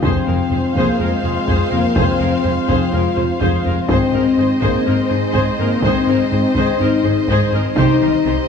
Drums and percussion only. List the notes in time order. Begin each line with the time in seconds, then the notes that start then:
0.03 taiko
0.75 taiko
1.48 taiko
1.96 taiko
2.69 taiko
3.41 taiko
3.89 taiko
4.62 taiko
5.34 taiko
5.82 taiko
6.55 taiko
7.28 taiko
7.76 taiko